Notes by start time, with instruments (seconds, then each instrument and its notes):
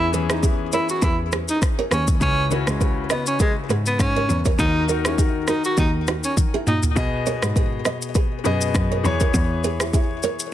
Already playing: cello E2, grand piano E3 B3 C#4 G#4
0.12 grand piano E3 B3 C#4 G#4, nylon-string guitar G#4 B4, shaker
0.30 tenor saxophone D#4, nylon-string guitar E4 G#4, cross-stick, shaker
0.43 nylon-string guitar E4 G#4, kick, shaker
0.72 tenor saxophone E4, nylon-string guitar A#4 C#5, shaker
0.89 tenor saxophone F#4, shaker
1.02 cello E2, tenor saxophone E4, nylon-string guitar G#4 B4, kick, shaker
1.32 nylon-string guitar G#4 B4, cross-stick, shaker
1.48 tenor saxophone D#4, shaker
1.62 kick, cross-stick, shaker
1.79 nylon-string guitar A#4 C#5
1.91 cello D#2, tenor saxophone C#4, nylon-string guitar G#4 B4, cross-stick, shaker
2.08 kick, shaker
2.20 cello C#2, grand piano C#3 C#4 E4 B4, tenor saxophone C#4, kick, shaker
2.50 grand piano C#3 C#4 E4 F#4, nylon-string guitar A#4 C#5, shaker
2.67 cello C#2, tenor saxophone G#3, nylon-string guitar G#4 B4, cross-stick, shaker
2.81 nylon-string guitar G#4 B4, kick, shaker
3.10 tenor saxophone B3, nylon-string guitar B4 D#5, cross-stick, shaker
3.27 tenor saxophone C#4, shaker
3.40 tenor saxophone G#3, nylon-string guitar G#4 B4, kick, shaker
3.70 cello G#2, nylon-string guitar G#4 B4, shaker
3.86 tenor saxophone B3, shaker
4.00 cello G#2, tenor saxophone C#4, kick, cross-stick, shaker
4.16 nylon-string guitar A#4 C#5
4.29 cello E2, shaker
4.45 nylon-string guitar A#4 C#5, kick, shaker
4.58 cello D#2, grand piano D#3 D#4 F#4 A#4, tenor saxophone D#4, kick, shaker
4.87 grand piano D#3 D#4 F#4 A#4, nylon-string guitar F#4 A#4, shaker
5.05 tenor saxophone C#4, nylon-string guitar E4 G#4, cross-stick, shaker
5.18 nylon-string guitar D#4 G#4, kick, shaker
5.48 tenor saxophone D#4, nylon-string guitar F#4 A#4, cross-stick, shaker
5.64 tenor saxophone F#4, shaker
5.77 cello D#2, tenor saxophone D#4, nylon-string guitar D#4 F#4, kick, shaker
6.07 nylon-string guitar D#4 F#4, cross-stick, shaker
6.24 tenor saxophone C#4, shaker
6.37 kick, high tom, shaker
6.54 nylon-string guitar E4 G#4
6.67 cello A#2, tenor saxophone D#4, nylon-string guitar D#4 F#4, mid tom, shaker
6.83 floor tom, shaker
6.95 grand piano B2 B3 G#4 D#5, cello B2, kick, shaker
7.26 nylon-string guitar A#4 C#5, shaker
7.42 cello G#2, nylon-string guitar G#4 B4, cross-stick, shaker
7.56 nylon-string guitar G#4 B4, kick, shaker
7.85 nylon-string guitar B4 D#5, cross-stick, shaker
8.02 shaker
8.15 nylon-string guitar G#4 B4, kick, shaker
8.44 cello F#2, grand piano B2 B3 G#4 D#5, nylon-string guitar G#4 B4, shaker
8.61 shaker
8.75 cello F#2, kick, cross-stick, shaker
8.91 nylon-string guitar A#4 C#5
9.03 cello E2, grand piano E3 B3 G#4 C#5, shaker
9.20 nylon-string guitar A#4 C#5, kick, shaker
9.34 cello E2, kick, shaker
9.64 nylon-string guitar G#4 B4, shaker
9.80 nylon-string guitar E4 G#4, cross-stick, shaker
9.93 nylon-string guitar E4 G#4, kick, shaker
10.23 nylon-string guitar A#4 C#5, shaker
10.40 shaker